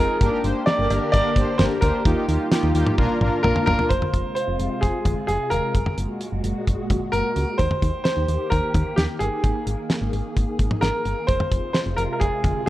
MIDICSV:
0, 0, Header, 1, 6, 480
1, 0, Start_track
1, 0, Tempo, 461538
1, 218, Time_signature, 4, 2, 24, 8
1, 13202, End_track
2, 0, Start_track
2, 0, Title_t, "Grand piano"
2, 0, Program_c, 0, 0
2, 0, Note_on_c, 0, 70, 94
2, 416, Note_off_c, 0, 70, 0
2, 685, Note_on_c, 0, 74, 107
2, 1148, Note_off_c, 0, 74, 0
2, 1164, Note_on_c, 0, 74, 106
2, 1644, Note_on_c, 0, 72, 101
2, 1666, Note_off_c, 0, 74, 0
2, 1700, Note_off_c, 0, 72, 0
2, 1883, Note_on_c, 0, 70, 85
2, 2337, Note_off_c, 0, 70, 0
2, 3564, Note_on_c, 0, 70, 100
2, 3788, Note_off_c, 0, 70, 0
2, 3804, Note_on_c, 0, 70, 103
2, 4044, Note_on_c, 0, 72, 99
2, 4059, Note_off_c, 0, 70, 0
2, 4506, Note_off_c, 0, 72, 0
2, 4522, Note_on_c, 0, 72, 93
2, 5002, Note_on_c, 0, 68, 77
2, 5025, Note_off_c, 0, 72, 0
2, 5467, Note_off_c, 0, 68, 0
2, 5483, Note_on_c, 0, 68, 80
2, 5722, Note_on_c, 0, 70, 94
2, 5738, Note_off_c, 0, 68, 0
2, 6176, Note_off_c, 0, 70, 0
2, 7403, Note_on_c, 0, 70, 92
2, 7882, Note_on_c, 0, 72, 103
2, 7905, Note_off_c, 0, 70, 0
2, 8347, Note_off_c, 0, 72, 0
2, 8363, Note_on_c, 0, 72, 98
2, 8842, Note_on_c, 0, 70, 90
2, 8865, Note_off_c, 0, 72, 0
2, 9322, Note_on_c, 0, 67, 85
2, 9345, Note_off_c, 0, 70, 0
2, 9378, Note_off_c, 0, 67, 0
2, 9562, Note_on_c, 0, 68, 81
2, 10016, Note_off_c, 0, 68, 0
2, 11243, Note_on_c, 0, 70, 93
2, 11723, Note_on_c, 0, 72, 97
2, 11745, Note_off_c, 0, 70, 0
2, 12188, Note_off_c, 0, 72, 0
2, 12204, Note_on_c, 0, 72, 93
2, 12259, Note_off_c, 0, 72, 0
2, 12444, Note_on_c, 0, 70, 85
2, 12496, Note_off_c, 0, 70, 0
2, 12611, Note_on_c, 0, 70, 65
2, 12685, Note_on_c, 0, 68, 83
2, 12691, Note_off_c, 0, 70, 0
2, 13138, Note_off_c, 0, 68, 0
2, 13165, Note_on_c, 0, 68, 82
2, 13202, Note_off_c, 0, 68, 0
2, 13202, End_track
3, 0, Start_track
3, 0, Title_t, "Analog polysynth"
3, 0, Program_c, 1, 90
3, 0, Note_on_c, 1, 60, 80
3, 0, Note_on_c, 1, 63, 72
3, 0, Note_on_c, 1, 65, 74
3, 0, Note_on_c, 1, 68, 85
3, 194, Note_off_c, 1, 60, 0
3, 194, Note_off_c, 1, 63, 0
3, 194, Note_off_c, 1, 65, 0
3, 194, Note_off_c, 1, 68, 0
3, 217, Note_on_c, 1, 58, 101
3, 217, Note_on_c, 1, 62, 92
3, 217, Note_on_c, 1, 67, 90
3, 217, Note_on_c, 1, 70, 109
3, 434, Note_off_c, 1, 58, 0
3, 434, Note_off_c, 1, 62, 0
3, 434, Note_off_c, 1, 67, 0
3, 434, Note_off_c, 1, 70, 0
3, 458, Note_on_c, 1, 58, 77
3, 458, Note_on_c, 1, 62, 71
3, 458, Note_on_c, 1, 67, 74
3, 458, Note_on_c, 1, 72, 89
3, 674, Note_off_c, 1, 58, 0
3, 674, Note_off_c, 1, 62, 0
3, 674, Note_off_c, 1, 67, 0
3, 674, Note_off_c, 1, 72, 0
3, 698, Note_on_c, 1, 58, 79
3, 698, Note_on_c, 1, 62, 71
3, 698, Note_on_c, 1, 67, 73
3, 698, Note_on_c, 1, 70, 87
3, 914, Note_off_c, 1, 58, 0
3, 914, Note_off_c, 1, 62, 0
3, 914, Note_off_c, 1, 67, 0
3, 914, Note_off_c, 1, 70, 0
3, 938, Note_on_c, 1, 58, 81
3, 938, Note_on_c, 1, 62, 73
3, 938, Note_on_c, 1, 67, 74
3, 938, Note_on_c, 1, 70, 89
3, 1154, Note_off_c, 1, 58, 0
3, 1154, Note_off_c, 1, 62, 0
3, 1154, Note_off_c, 1, 67, 0
3, 1154, Note_off_c, 1, 70, 0
3, 1178, Note_on_c, 1, 58, 98
3, 1178, Note_on_c, 1, 62, 88
3, 1178, Note_on_c, 1, 67, 91
3, 1178, Note_on_c, 1, 70, 111
3, 1394, Note_off_c, 1, 58, 0
3, 1394, Note_off_c, 1, 62, 0
3, 1394, Note_off_c, 1, 67, 0
3, 1394, Note_off_c, 1, 70, 0
3, 1418, Note_on_c, 1, 58, 77
3, 1418, Note_on_c, 1, 62, 72
3, 1418, Note_on_c, 1, 67, 70
3, 1418, Note_on_c, 1, 72, 88
3, 1634, Note_off_c, 1, 58, 0
3, 1634, Note_off_c, 1, 62, 0
3, 1634, Note_off_c, 1, 67, 0
3, 1634, Note_off_c, 1, 72, 0
3, 1658, Note_on_c, 1, 58, 78
3, 1658, Note_on_c, 1, 62, 73
3, 1658, Note_on_c, 1, 67, 71
3, 1658, Note_on_c, 1, 70, 87
3, 1874, Note_off_c, 1, 58, 0
3, 1874, Note_off_c, 1, 62, 0
3, 1874, Note_off_c, 1, 67, 0
3, 1874, Note_off_c, 1, 70, 0
3, 1899, Note_on_c, 1, 58, 80
3, 1899, Note_on_c, 1, 62, 75
3, 1899, Note_on_c, 1, 67, 76
3, 1899, Note_on_c, 1, 72, 89
3, 2114, Note_off_c, 1, 62, 0
3, 2114, Note_off_c, 1, 67, 0
3, 2115, Note_off_c, 1, 58, 0
3, 2115, Note_off_c, 1, 72, 0
3, 2138, Note_on_c, 1, 58, 99
3, 2138, Note_on_c, 1, 63, 92
3, 2138, Note_on_c, 1, 65, 93
3, 2138, Note_on_c, 1, 67, 112
3, 2354, Note_off_c, 1, 58, 0
3, 2354, Note_off_c, 1, 63, 0
3, 2354, Note_off_c, 1, 65, 0
3, 2354, Note_off_c, 1, 67, 0
3, 2378, Note_on_c, 1, 58, 80
3, 2378, Note_on_c, 1, 63, 73
3, 2378, Note_on_c, 1, 65, 71
3, 2378, Note_on_c, 1, 67, 84
3, 2594, Note_off_c, 1, 58, 0
3, 2594, Note_off_c, 1, 63, 0
3, 2594, Note_off_c, 1, 65, 0
3, 2594, Note_off_c, 1, 67, 0
3, 2618, Note_on_c, 1, 58, 96
3, 2618, Note_on_c, 1, 63, 89
3, 2618, Note_on_c, 1, 65, 85
3, 2618, Note_on_c, 1, 67, 106
3, 2834, Note_off_c, 1, 58, 0
3, 2834, Note_off_c, 1, 63, 0
3, 2834, Note_off_c, 1, 65, 0
3, 2834, Note_off_c, 1, 67, 0
3, 2858, Note_on_c, 1, 58, 96
3, 2858, Note_on_c, 1, 63, 86
3, 2858, Note_on_c, 1, 65, 84
3, 2858, Note_on_c, 1, 67, 106
3, 3074, Note_off_c, 1, 58, 0
3, 3074, Note_off_c, 1, 63, 0
3, 3074, Note_off_c, 1, 65, 0
3, 3074, Note_off_c, 1, 67, 0
3, 3098, Note_on_c, 1, 58, 119
3, 3098, Note_on_c, 1, 62, 109
3, 3098, Note_on_c, 1, 65, 109
3, 3098, Note_on_c, 1, 70, 127
3, 3314, Note_off_c, 1, 58, 0
3, 3314, Note_off_c, 1, 62, 0
3, 3314, Note_off_c, 1, 65, 0
3, 3314, Note_off_c, 1, 70, 0
3, 3338, Note_on_c, 1, 58, 90
3, 3338, Note_on_c, 1, 62, 86
3, 3338, Note_on_c, 1, 65, 87
3, 3338, Note_on_c, 1, 70, 104
3, 3554, Note_off_c, 1, 58, 0
3, 3554, Note_off_c, 1, 62, 0
3, 3554, Note_off_c, 1, 65, 0
3, 3554, Note_off_c, 1, 70, 0
3, 3578, Note_on_c, 1, 58, 97
3, 3578, Note_on_c, 1, 62, 86
3, 3578, Note_on_c, 1, 65, 85
3, 3578, Note_on_c, 1, 70, 104
3, 3794, Note_off_c, 1, 58, 0
3, 3794, Note_off_c, 1, 62, 0
3, 3794, Note_off_c, 1, 65, 0
3, 3794, Note_off_c, 1, 70, 0
3, 3818, Note_on_c, 1, 58, 95
3, 3818, Note_on_c, 1, 62, 86
3, 3818, Note_on_c, 1, 65, 88
3, 3818, Note_on_c, 1, 70, 106
3, 4034, Note_off_c, 1, 58, 0
3, 4034, Note_off_c, 1, 62, 0
3, 4034, Note_off_c, 1, 65, 0
3, 4034, Note_off_c, 1, 70, 0
3, 13202, End_track
4, 0, Start_track
4, 0, Title_t, "String machine"
4, 0, Program_c, 2, 50
4, 0, Note_on_c, 2, 51, 83
4, 0, Note_on_c, 2, 56, 77
4, 0, Note_on_c, 2, 65, 92
4, 180, Note_off_c, 2, 51, 0
4, 180, Note_off_c, 2, 56, 0
4, 180, Note_off_c, 2, 65, 0
4, 218, Note_on_c, 2, 50, 84
4, 218, Note_on_c, 2, 58, 78
4, 218, Note_on_c, 2, 67, 94
4, 2119, Note_off_c, 2, 50, 0
4, 2119, Note_off_c, 2, 58, 0
4, 2119, Note_off_c, 2, 67, 0
4, 2138, Note_on_c, 2, 51, 77
4, 2138, Note_on_c, 2, 55, 73
4, 2138, Note_on_c, 2, 65, 86
4, 3085, Note_off_c, 2, 65, 0
4, 3088, Note_off_c, 2, 51, 0
4, 3089, Note_off_c, 2, 55, 0
4, 3097, Note_on_c, 2, 50, 74
4, 3097, Note_on_c, 2, 58, 71
4, 3098, Note_on_c, 2, 65, 81
4, 4045, Note_off_c, 2, 65, 0
4, 4048, Note_off_c, 2, 50, 0
4, 4048, Note_off_c, 2, 58, 0
4, 4057, Note_on_c, 2, 65, 86
4, 4058, Note_on_c, 2, 48, 75
4, 4058, Note_on_c, 2, 56, 69
4, 5959, Note_off_c, 2, 48, 0
4, 5959, Note_off_c, 2, 56, 0
4, 5959, Note_off_c, 2, 65, 0
4, 5978, Note_on_c, 2, 46, 78
4, 5978, Note_on_c, 2, 66, 89
4, 5979, Note_on_c, 2, 56, 69
4, 7879, Note_off_c, 2, 46, 0
4, 7879, Note_off_c, 2, 56, 0
4, 7879, Note_off_c, 2, 66, 0
4, 7897, Note_on_c, 2, 51, 76
4, 7897, Note_on_c, 2, 58, 70
4, 7898, Note_on_c, 2, 67, 86
4, 9799, Note_off_c, 2, 67, 0
4, 9818, Note_on_c, 2, 68, 86
4, 11699, Note_off_c, 2, 51, 0
4, 11699, Note_off_c, 2, 58, 0
4, 11719, Note_off_c, 2, 68, 0
4, 11738, Note_on_c, 2, 48, 81
4, 11738, Note_on_c, 2, 56, 72
4, 11738, Note_on_c, 2, 65, 87
4, 13202, Note_off_c, 2, 48, 0
4, 13202, Note_off_c, 2, 56, 0
4, 13202, Note_off_c, 2, 65, 0
4, 13202, End_track
5, 0, Start_track
5, 0, Title_t, "FM bass"
5, 0, Program_c, 3, 39
5, 219, Note_on_c, 3, 31, 114
5, 310, Note_off_c, 3, 31, 0
5, 458, Note_on_c, 3, 31, 104
5, 550, Note_off_c, 3, 31, 0
5, 819, Note_on_c, 3, 31, 100
5, 910, Note_off_c, 3, 31, 0
5, 939, Note_on_c, 3, 31, 99
5, 1030, Note_off_c, 3, 31, 0
5, 1181, Note_on_c, 3, 31, 110
5, 1272, Note_off_c, 3, 31, 0
5, 1416, Note_on_c, 3, 31, 102
5, 1508, Note_off_c, 3, 31, 0
5, 1659, Note_on_c, 3, 31, 108
5, 1750, Note_off_c, 3, 31, 0
5, 1900, Note_on_c, 3, 38, 93
5, 1991, Note_off_c, 3, 38, 0
5, 2139, Note_on_c, 3, 39, 109
5, 2230, Note_off_c, 3, 39, 0
5, 2379, Note_on_c, 3, 39, 103
5, 2470, Note_off_c, 3, 39, 0
5, 2739, Note_on_c, 3, 39, 101
5, 2830, Note_off_c, 3, 39, 0
5, 2858, Note_on_c, 3, 39, 100
5, 2950, Note_off_c, 3, 39, 0
5, 3101, Note_on_c, 3, 34, 108
5, 3192, Note_off_c, 3, 34, 0
5, 3338, Note_on_c, 3, 34, 98
5, 3430, Note_off_c, 3, 34, 0
5, 3578, Note_on_c, 3, 34, 105
5, 3670, Note_off_c, 3, 34, 0
5, 3818, Note_on_c, 3, 31, 97
5, 3909, Note_off_c, 3, 31, 0
5, 4058, Note_on_c, 3, 29, 101
5, 4150, Note_off_c, 3, 29, 0
5, 4298, Note_on_c, 3, 29, 94
5, 4390, Note_off_c, 3, 29, 0
5, 4658, Note_on_c, 3, 29, 85
5, 4750, Note_off_c, 3, 29, 0
5, 4778, Note_on_c, 3, 29, 92
5, 4870, Note_off_c, 3, 29, 0
5, 5021, Note_on_c, 3, 29, 96
5, 5112, Note_off_c, 3, 29, 0
5, 5255, Note_on_c, 3, 29, 94
5, 5348, Note_off_c, 3, 29, 0
5, 5498, Note_on_c, 3, 29, 99
5, 5590, Note_off_c, 3, 29, 0
5, 5739, Note_on_c, 3, 27, 93
5, 5830, Note_off_c, 3, 27, 0
5, 5978, Note_on_c, 3, 30, 96
5, 6070, Note_off_c, 3, 30, 0
5, 6219, Note_on_c, 3, 30, 91
5, 6310, Note_off_c, 3, 30, 0
5, 6579, Note_on_c, 3, 30, 86
5, 6670, Note_off_c, 3, 30, 0
5, 6698, Note_on_c, 3, 30, 92
5, 6790, Note_off_c, 3, 30, 0
5, 6940, Note_on_c, 3, 30, 97
5, 7031, Note_off_c, 3, 30, 0
5, 7175, Note_on_c, 3, 30, 99
5, 7268, Note_off_c, 3, 30, 0
5, 7417, Note_on_c, 3, 30, 97
5, 7509, Note_off_c, 3, 30, 0
5, 7658, Note_on_c, 3, 37, 90
5, 7750, Note_off_c, 3, 37, 0
5, 7898, Note_on_c, 3, 39, 98
5, 7990, Note_off_c, 3, 39, 0
5, 8138, Note_on_c, 3, 39, 106
5, 8230, Note_off_c, 3, 39, 0
5, 8499, Note_on_c, 3, 39, 87
5, 8590, Note_off_c, 3, 39, 0
5, 8618, Note_on_c, 3, 39, 90
5, 8710, Note_off_c, 3, 39, 0
5, 8861, Note_on_c, 3, 39, 105
5, 8952, Note_off_c, 3, 39, 0
5, 9096, Note_on_c, 3, 39, 100
5, 9188, Note_off_c, 3, 39, 0
5, 9339, Note_on_c, 3, 39, 106
5, 9430, Note_off_c, 3, 39, 0
5, 9579, Note_on_c, 3, 31, 89
5, 9670, Note_off_c, 3, 31, 0
5, 9819, Note_on_c, 3, 32, 94
5, 9910, Note_off_c, 3, 32, 0
5, 10059, Note_on_c, 3, 32, 95
5, 10150, Note_off_c, 3, 32, 0
5, 10419, Note_on_c, 3, 32, 93
5, 10510, Note_off_c, 3, 32, 0
5, 10538, Note_on_c, 3, 32, 91
5, 10630, Note_off_c, 3, 32, 0
5, 10781, Note_on_c, 3, 32, 100
5, 10872, Note_off_c, 3, 32, 0
5, 11016, Note_on_c, 3, 32, 95
5, 11108, Note_off_c, 3, 32, 0
5, 11258, Note_on_c, 3, 32, 94
5, 11350, Note_off_c, 3, 32, 0
5, 11498, Note_on_c, 3, 31, 83
5, 11590, Note_off_c, 3, 31, 0
5, 11738, Note_on_c, 3, 29, 100
5, 11830, Note_off_c, 3, 29, 0
5, 11979, Note_on_c, 3, 29, 93
5, 12070, Note_off_c, 3, 29, 0
5, 12338, Note_on_c, 3, 29, 87
5, 12430, Note_off_c, 3, 29, 0
5, 12459, Note_on_c, 3, 29, 92
5, 12550, Note_off_c, 3, 29, 0
5, 12701, Note_on_c, 3, 29, 91
5, 12792, Note_off_c, 3, 29, 0
5, 12935, Note_on_c, 3, 29, 95
5, 13028, Note_off_c, 3, 29, 0
5, 13202, End_track
6, 0, Start_track
6, 0, Title_t, "Drums"
6, 218, Note_on_c, 9, 36, 117
6, 218, Note_on_c, 9, 42, 75
6, 322, Note_off_c, 9, 36, 0
6, 322, Note_off_c, 9, 42, 0
6, 458, Note_on_c, 9, 42, 74
6, 562, Note_off_c, 9, 42, 0
6, 696, Note_on_c, 9, 38, 115
6, 697, Note_on_c, 9, 42, 82
6, 800, Note_off_c, 9, 38, 0
6, 801, Note_off_c, 9, 42, 0
6, 938, Note_on_c, 9, 42, 77
6, 940, Note_on_c, 9, 56, 63
6, 1042, Note_off_c, 9, 42, 0
6, 1044, Note_off_c, 9, 56, 0
6, 1181, Note_on_c, 9, 36, 92
6, 1181, Note_on_c, 9, 42, 79
6, 1285, Note_off_c, 9, 36, 0
6, 1285, Note_off_c, 9, 42, 0
6, 1416, Note_on_c, 9, 36, 93
6, 1417, Note_on_c, 9, 42, 74
6, 1520, Note_off_c, 9, 36, 0
6, 1521, Note_off_c, 9, 42, 0
6, 1657, Note_on_c, 9, 45, 96
6, 1658, Note_on_c, 9, 38, 113
6, 1658, Note_on_c, 9, 42, 78
6, 1761, Note_off_c, 9, 45, 0
6, 1762, Note_off_c, 9, 38, 0
6, 1762, Note_off_c, 9, 42, 0
6, 1896, Note_on_c, 9, 42, 84
6, 1900, Note_on_c, 9, 36, 90
6, 2000, Note_off_c, 9, 42, 0
6, 2004, Note_off_c, 9, 36, 0
6, 2139, Note_on_c, 9, 36, 117
6, 2139, Note_on_c, 9, 42, 76
6, 2243, Note_off_c, 9, 36, 0
6, 2243, Note_off_c, 9, 42, 0
6, 2379, Note_on_c, 9, 42, 74
6, 2483, Note_off_c, 9, 42, 0
6, 2617, Note_on_c, 9, 38, 117
6, 2618, Note_on_c, 9, 42, 84
6, 2721, Note_off_c, 9, 38, 0
6, 2722, Note_off_c, 9, 42, 0
6, 2858, Note_on_c, 9, 42, 75
6, 2962, Note_off_c, 9, 42, 0
6, 2979, Note_on_c, 9, 47, 90
6, 3083, Note_off_c, 9, 47, 0
6, 3099, Note_on_c, 9, 48, 62
6, 3101, Note_on_c, 9, 36, 91
6, 3203, Note_off_c, 9, 48, 0
6, 3205, Note_off_c, 9, 36, 0
6, 3339, Note_on_c, 9, 47, 77
6, 3443, Note_off_c, 9, 47, 0
6, 3579, Note_on_c, 9, 45, 96
6, 3683, Note_off_c, 9, 45, 0
6, 3698, Note_on_c, 9, 45, 87
6, 3802, Note_off_c, 9, 45, 0
6, 3818, Note_on_c, 9, 43, 113
6, 3922, Note_off_c, 9, 43, 0
6, 3938, Note_on_c, 9, 43, 101
6, 4042, Note_off_c, 9, 43, 0
6, 4058, Note_on_c, 9, 36, 101
6, 4058, Note_on_c, 9, 42, 67
6, 4162, Note_off_c, 9, 36, 0
6, 4162, Note_off_c, 9, 42, 0
6, 4178, Note_on_c, 9, 45, 89
6, 4282, Note_off_c, 9, 45, 0
6, 4298, Note_on_c, 9, 36, 82
6, 4298, Note_on_c, 9, 42, 64
6, 4402, Note_off_c, 9, 36, 0
6, 4402, Note_off_c, 9, 42, 0
6, 4537, Note_on_c, 9, 42, 74
6, 4641, Note_off_c, 9, 42, 0
6, 4778, Note_on_c, 9, 42, 65
6, 4882, Note_off_c, 9, 42, 0
6, 5020, Note_on_c, 9, 42, 72
6, 5021, Note_on_c, 9, 36, 80
6, 5124, Note_off_c, 9, 42, 0
6, 5125, Note_off_c, 9, 36, 0
6, 5255, Note_on_c, 9, 36, 81
6, 5256, Note_on_c, 9, 42, 66
6, 5259, Note_on_c, 9, 45, 85
6, 5359, Note_off_c, 9, 36, 0
6, 5360, Note_off_c, 9, 42, 0
6, 5363, Note_off_c, 9, 45, 0
6, 5497, Note_on_c, 9, 42, 70
6, 5601, Note_off_c, 9, 42, 0
6, 5735, Note_on_c, 9, 42, 77
6, 5839, Note_off_c, 9, 42, 0
6, 5978, Note_on_c, 9, 36, 98
6, 5978, Note_on_c, 9, 42, 64
6, 6082, Note_off_c, 9, 36, 0
6, 6082, Note_off_c, 9, 42, 0
6, 6098, Note_on_c, 9, 45, 85
6, 6202, Note_off_c, 9, 45, 0
6, 6218, Note_on_c, 9, 42, 65
6, 6322, Note_off_c, 9, 42, 0
6, 6457, Note_on_c, 9, 42, 74
6, 6561, Note_off_c, 9, 42, 0
6, 6697, Note_on_c, 9, 42, 66
6, 6801, Note_off_c, 9, 42, 0
6, 6940, Note_on_c, 9, 42, 72
6, 6941, Note_on_c, 9, 36, 81
6, 7044, Note_off_c, 9, 42, 0
6, 7045, Note_off_c, 9, 36, 0
6, 7175, Note_on_c, 9, 36, 83
6, 7176, Note_on_c, 9, 42, 67
6, 7179, Note_on_c, 9, 45, 83
6, 7279, Note_off_c, 9, 36, 0
6, 7280, Note_off_c, 9, 42, 0
6, 7283, Note_off_c, 9, 45, 0
6, 7417, Note_on_c, 9, 42, 69
6, 7521, Note_off_c, 9, 42, 0
6, 7655, Note_on_c, 9, 42, 74
6, 7759, Note_off_c, 9, 42, 0
6, 7898, Note_on_c, 9, 36, 104
6, 7898, Note_on_c, 9, 42, 69
6, 8002, Note_off_c, 9, 36, 0
6, 8002, Note_off_c, 9, 42, 0
6, 8018, Note_on_c, 9, 45, 90
6, 8122, Note_off_c, 9, 45, 0
6, 8138, Note_on_c, 9, 36, 86
6, 8138, Note_on_c, 9, 42, 67
6, 8242, Note_off_c, 9, 36, 0
6, 8242, Note_off_c, 9, 42, 0
6, 8376, Note_on_c, 9, 38, 100
6, 8377, Note_on_c, 9, 42, 71
6, 8480, Note_off_c, 9, 38, 0
6, 8481, Note_off_c, 9, 42, 0
6, 8618, Note_on_c, 9, 42, 67
6, 8722, Note_off_c, 9, 42, 0
6, 8860, Note_on_c, 9, 42, 72
6, 8861, Note_on_c, 9, 36, 81
6, 8964, Note_off_c, 9, 42, 0
6, 8965, Note_off_c, 9, 36, 0
6, 9096, Note_on_c, 9, 36, 82
6, 9097, Note_on_c, 9, 42, 68
6, 9100, Note_on_c, 9, 45, 86
6, 9200, Note_off_c, 9, 36, 0
6, 9201, Note_off_c, 9, 42, 0
6, 9204, Note_off_c, 9, 45, 0
6, 9338, Note_on_c, 9, 38, 101
6, 9338, Note_on_c, 9, 42, 71
6, 9442, Note_off_c, 9, 38, 0
6, 9442, Note_off_c, 9, 42, 0
6, 9576, Note_on_c, 9, 42, 76
6, 9680, Note_off_c, 9, 42, 0
6, 9819, Note_on_c, 9, 36, 100
6, 9819, Note_on_c, 9, 42, 67
6, 9923, Note_off_c, 9, 36, 0
6, 9923, Note_off_c, 9, 42, 0
6, 10059, Note_on_c, 9, 42, 67
6, 10163, Note_off_c, 9, 42, 0
6, 10296, Note_on_c, 9, 38, 100
6, 10298, Note_on_c, 9, 42, 72
6, 10400, Note_off_c, 9, 38, 0
6, 10402, Note_off_c, 9, 42, 0
6, 10539, Note_on_c, 9, 42, 70
6, 10643, Note_off_c, 9, 42, 0
6, 10781, Note_on_c, 9, 36, 82
6, 10781, Note_on_c, 9, 42, 70
6, 10885, Note_off_c, 9, 36, 0
6, 10885, Note_off_c, 9, 42, 0
6, 11016, Note_on_c, 9, 36, 86
6, 11017, Note_on_c, 9, 42, 66
6, 11120, Note_off_c, 9, 36, 0
6, 11121, Note_off_c, 9, 42, 0
6, 11137, Note_on_c, 9, 47, 90
6, 11241, Note_off_c, 9, 47, 0
6, 11258, Note_on_c, 9, 38, 98
6, 11258, Note_on_c, 9, 42, 67
6, 11362, Note_off_c, 9, 38, 0
6, 11362, Note_off_c, 9, 42, 0
6, 11496, Note_on_c, 9, 42, 74
6, 11600, Note_off_c, 9, 42, 0
6, 11738, Note_on_c, 9, 36, 102
6, 11738, Note_on_c, 9, 42, 65
6, 11842, Note_off_c, 9, 36, 0
6, 11842, Note_off_c, 9, 42, 0
6, 11859, Note_on_c, 9, 45, 91
6, 11963, Note_off_c, 9, 45, 0
6, 11979, Note_on_c, 9, 36, 84
6, 11979, Note_on_c, 9, 42, 68
6, 12083, Note_off_c, 9, 36, 0
6, 12083, Note_off_c, 9, 42, 0
6, 12216, Note_on_c, 9, 38, 105
6, 12217, Note_on_c, 9, 42, 73
6, 12320, Note_off_c, 9, 38, 0
6, 12321, Note_off_c, 9, 42, 0
6, 12458, Note_on_c, 9, 42, 68
6, 12562, Note_off_c, 9, 42, 0
6, 12700, Note_on_c, 9, 42, 75
6, 12701, Note_on_c, 9, 36, 82
6, 12804, Note_off_c, 9, 42, 0
6, 12805, Note_off_c, 9, 36, 0
6, 12935, Note_on_c, 9, 36, 82
6, 12937, Note_on_c, 9, 42, 66
6, 12939, Note_on_c, 9, 45, 86
6, 13039, Note_off_c, 9, 36, 0
6, 13041, Note_off_c, 9, 42, 0
6, 13043, Note_off_c, 9, 45, 0
6, 13202, End_track
0, 0, End_of_file